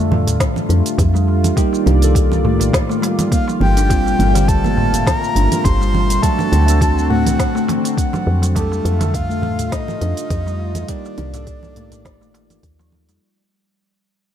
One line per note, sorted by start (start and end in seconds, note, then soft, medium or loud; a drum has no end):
0.00 0.29 F2 loud
0.00 0.11 A3 medium
0.00 1.54 A3 medium
0.00 1.59 A3 medium
0.00 1.59 D4 medium
0.00 6.19 F4 medium
0.00 1.58 G4 loud
0.00 1.55 A4 medium
0.11 darbuka dum medium
0.11 low conga medium
0.27 0.38 D#2 loud
0.27 open hi-hat soft
0.27 darbuka dum medium
0.27 shaker medium
0.40 kick loud
0.40 snare medium
0.40 open hi-hat medium
0.40 shaker medium
0.56 low conga medium
0.56 shaker soft
0.69 0.82 F2 medium
0.69 0.97 D4 medium
0.69 open hi-hat soft
0.86 open hi-hat soft
0.86 shaker medium
0.98 1.52 F2 medium
0.98 1.13 G4 medium
0.98 kick loud
0.98 open hi-hat medium
0.98 low conga medium
0.98 shaker medium
1.14 1.56 G3 medium
1.14 darbuka ka soft
1.14 shaker soft
1.28 darbuka ka soft
1.44 open hi-hat soft
1.44 low conga medium
1.44 shaker medium
1.56 3.88 D#3 medium
1.56 1.72 G3 medium
1.56 1.98 A#3 medium
1.56 1.98 D#4 medium
1.56 1.99 G4 loud
1.56 3.88 D5 medium
1.56 kick loud
1.56 open hi-hat medium
1.56 shaker medium
1.73 darbuka ka medium
1.73 shaker soft
1.86 2.62 C2 loud
1.86 2.14 D4 medium
1.86 open hi-hat soft
1.86 low conga medium
2.02 3.87 D#3 medium
2.02 3.88 A4 medium
2.02 open hi-hat soft
2.02 shaker medium
2.15 2.43 G4 medium
2.15 kick loud
2.15 open hi-hat medium
2.15 shaker medium
2.32 low conga medium
2.32 shaker soft
2.45 2.88 A3 medium
2.45 darbuka dum medium
2.60 2.71 A#1 loud
2.60 open hi-hat soft
2.60 darbuka dum medium
2.60 shaker medium
2.73 kick loud
2.73 snare medium
2.73 open hi-hat soft
2.73 low conga medium
2.73 shaker medium
2.89 3.01 A3 medium
2.89 darbuka ka medium
2.89 shaker soft
3.02 3.17 G3 loud
3.02 open hi-hat soft
3.02 darbuka tek medium
3.19 3.31 G3 medium
3.19 open hi-hat soft
3.19 darbuka ka soft
3.19 low conga medium
3.19 shaker medium
3.32 3.41 A#3 loud
3.32 3.45 F5 medium
3.32 kick loud
3.32 open hi-hat medium
3.32 shaker medium
3.48 3.60 F3 medium
3.48 darbuka tek medium
3.48 shaker soft
3.61 4.15 G1 loud
3.61 4.49 G5 loud
3.61 low conga medium
3.77 3.89 D4 medium
3.77 open hi-hat soft
3.77 darbuka ka medium
3.77 darbuka tek soft
3.77 shaker medium
3.89 6.20 A#2 medium
3.89 4.31 G3 loud
3.89 3.99 G3 medium
3.89 6.21 A3 medium
3.89 4.31 C4 medium
3.89 4.32 F4 loud
3.89 kick loud
3.89 open hi-hat medium
3.89 shaker medium
4.06 darbuka ka medium
4.06 shaker soft
4.19 4.95 G1 loud
4.19 open hi-hat soft
4.19 low conga medium
4.33 4.63 D3 medium
4.33 6.19 G3 medium
4.33 6.20 C4 medium
4.33 6.21 G4 medium
4.33 open hi-hat soft
4.33 darbuka tek medium
4.33 shaker medium
4.48 5.05 A5 loud
4.48 kick loud
4.48 open hi-hat medium
4.48 shaker medium
4.64 4.77 A#3 medium
4.64 low conga medium
4.64 shaker soft
4.77 darbuka dum medium
4.93 5.04 F1 loud
4.93 open hi-hat soft
4.93 darbuka dum medium
4.93 shaker medium
5.06 5.66 A#5 loud
5.06 kick loud
5.06 snare medium
5.06 open hi-hat soft
5.06 low conga medium
5.06 shaker medium
5.24 shaker soft
5.36 5.48 G1 medium
5.36 5.64 D4 medium
5.36 open hi-hat soft
5.52 open hi-hat soft
5.52 low conga medium
5.52 shaker medium
5.64 6.19 G1 medium
5.64 5.79 G4 medium
5.64 6.22 C6 loud
5.64 kick loud
5.64 open hi-hat medium
5.64 shaker medium
5.81 6.22 G3 medium
5.81 darbuka ka soft
5.81 shaker soft
5.94 darbuka ka soft
5.94 low conga medium
6.10 open hi-hat soft
6.10 shaker medium
6.22 8.54 D3 medium
6.22 6.38 F#3 medium
6.22 6.64 A3 loud
6.22 8.54 C4 medium
6.22 6.64 D4 medium
6.22 8.54 F#4 medium
6.22 6.65 F#4 loud
6.22 7.06 A5 loud
6.22 kick loud
6.22 open hi-hat medium
6.22 shaker medium
6.38 darbuka ka medium
6.38 low conga medium
6.38 shaker soft
6.52 7.28 D2 loud
6.52 6.80 D4 medium
6.52 open hi-hat soft
6.66 8.52 A3 medium
6.66 8.53 D4 medium
6.66 open hi-hat soft
6.66 shaker medium
6.70 8.54 A4 loud
6.81 7.09 F#4 medium
6.81 kick medium
6.81 open hi-hat medium
6.81 low conga medium
6.81 shaker medium
6.98 shaker soft
7.10 7.54 A3 medium
7.10 7.64 F#5 medium
7.10 darbuka dum medium
7.26 7.37 C2 loud
7.26 open hi-hat soft
7.26 low conga medium
7.26 shaker medium
7.39 kick loud
7.39 snare medium
7.39 open hi-hat medium
7.39 shaker medium
7.55 8.12 A3 medium
7.55 darbuka ka medium
7.55 shaker soft
7.68 open hi-hat soft
7.68 darbuka tek medium
7.68 low conga medium
7.84 open hi-hat soft
7.84 darbuka ka medium
7.84 shaker medium
7.98 kick loud
7.98 open hi-hat medium
7.98 shaker medium
8.13 8.21 F#3 loud
8.13 darbuka tek medium
8.13 low conga medium
8.13 shaker soft
8.27 8.81 F2 loud
8.42 8.55 F#3 medium
8.42 open hi-hat soft
8.42 darbuka ka medium
8.42 darbuka tek soft
8.42 shaker medium
8.55 8.65 G3 medium
8.55 8.97 A3 loud
8.55 10.87 A3 medium
8.55 8.97 D4 medium
8.55 13.18 F4 medium
8.55 8.98 G4 loud
8.55 9.16 A4 loud
8.55 kick loud
8.55 open hi-hat medium
8.55 low conga medium
8.55 shaker medium
8.72 darbuka ka medium
8.72 shaker soft
8.85 9.60 F2 loud
8.85 open hi-hat soft
8.99 9.28 D3 loud
8.99 10.86 D3 medium
8.99 10.85 A3 medium
8.99 10.87 A4 loud
8.99 open hi-hat soft
8.99 darbuka tek medium
8.99 low conga medium
8.99 shaker medium
9.14 9.73 F5 loud
9.14 kick medium
9.14 open hi-hat medium
9.14 shaker soft
9.29 9.42 A3 medium
9.29 shaker soft
9.42 darbuka dum medium
9.42 low conga medium
9.59 9.70 D#2 loud
9.59 open hi-hat soft
9.59 darbuka dum medium
9.59 shaker medium
9.72 10.82 D#5 loud
9.72 kick loud
9.72 snare medium
9.72 open hi-hat medium
9.72 shaker medium
9.88 low conga medium
9.88 shaker soft
10.01 10.14 F2 medium
10.01 10.29 D4 medium
10.01 open hi-hat soft
10.17 open hi-hat soft
10.17 shaker medium
10.30 10.85 F2 medium
10.30 10.45 G4 medium
10.30 kick loud
10.30 open hi-hat medium
10.30 low conga medium
10.30 shaker medium
10.46 10.88 G3 medium
10.46 darbuka ka medium
10.46 shaker soft
10.60 darbuka ka soft
10.75 open hi-hat soft
10.75 low conga medium
10.75 shaker medium
10.82 10.91 D#5 medium
10.88 13.20 D#3 medium
10.88 11.04 G3 medium
10.88 11.30 A#3 loud
10.88 11.30 D#4 medium
10.88 11.31 G4 loud
10.88 12.64 D5 loud
10.88 13.20 D5 medium
10.88 kick loud
10.88 open hi-hat medium
10.88 shaker medium
11.05 darbuka ka medium
11.05 shaker soft
11.18 11.94 C2 loud
11.18 11.46 D4 medium
11.18 open hi-hat soft
11.18 low conga medium
11.34 13.19 D#3 medium
11.34 13.20 A4 loud
11.34 open hi-hat soft
11.34 darbuka tek medium
11.34 darbuka dum medium
11.34 shaker medium
11.47 11.75 G4 medium
11.47 kick loud
11.47 open hi-hat medium
11.47 shaker medium
11.63 low conga medium
11.63 shaker soft
11.76 12.20 A3 medium
11.76 open hi-hat soft
11.76 darbuka dum medium
11.92 12.07 A#1 loud
11.92 open hi-hat soft
11.92 darbuka dum medium
11.92 shaker medium
12.05 12.59 G1 loud
12.05 kick loud
12.05 snare medium
12.05 open hi-hat medium
12.05 low conga medium
12.05 shaker medium
12.21 12.78 A3 medium
12.21 darbuka ka medium
12.21 shaker soft
12.34 open hi-hat soft
12.34 darbuka tek medium
12.50 open hi-hat soft
12.50 darbuka ka medium
12.50 low conga medium
12.50 shaker medium
12.63 13.10 D#2 medium
12.63 kick loud
12.63 open hi-hat medium
12.63 shaker medium
12.79 12.87 F3 loud
12.79 darbuka tek medium
12.79 shaker soft
12.92 low conga medium
13.08 13.19 F2 medium
13.08 13.21 G3 medium
13.08 open hi-hat soft
13.08 darbuka ka medium
13.08 darbuka tek soft
13.08 shaker medium